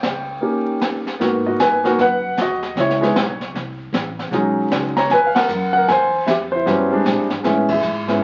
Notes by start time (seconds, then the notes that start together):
Already playing: C#5 G5
0.03 C#2, snare, hi-hat pedal
0.41 A#3 C#4 D#4 G4, brush sweep
0.81 snare, hi-hat pedal
1.07 snare
1.20 G#2 A#3 B3 D#4 F#4, brush sweep, snare
1.46 F#4 D#5
1.58 G2 B4 G#5, snare, hi-hat pedal
1.84 A#3 B3 D#4 F#4, snare
1.98 F#2 B4 F#5, brush sweep, snare
2.37 D#2 F#4, snare, hi-hat pedal
2.42 D#5
2.63 snare
2.76 C#2, brush sweep, snare
2.80 E4 C#5
2.90 snare
3.01 G#3 B3 D#4 E4, snare
3.16 B1, snare, hi-hat pedal
3.41 snare
3.54 C2, brush sweep, snare
3.93 A1, snare, hi-hat pedal
4.19 snare
4.31 B1 F#3 G#3 C#4 D#4, brush sweep, snare
4.71 C#2, snare, hi-hat pedal
4.97 C#5 A#5, snare
5.10 D#2 B4 G#5, brush sweep, snare
5.27 F5
5.35 A#4 F#5, snare, ride
5.49 F#2, hi-hat pedal
5.73 F#5
5.77 A#4
5.88 E2 C5 G#5, brush sweep, snare
6.26 F2 G4 E5, snare, hi-hat pedal
6.52 E4 C5
6.66 G2 F#3 G3 B3 C#4, brush sweep, snare
6.91 G3 G#3 C4 D4
7.06 A#2, snare, hi-hat pedal
7.19 G#2
7.30 E2, snare
7.43 A2 G#3 B3 C#4 E4, brush sweep, snare
7.68 E5, kick, ride
7.73 G#4
7.83 G#2, hi-hat pedal
8.08 G#3 B3 C#4 E4, snare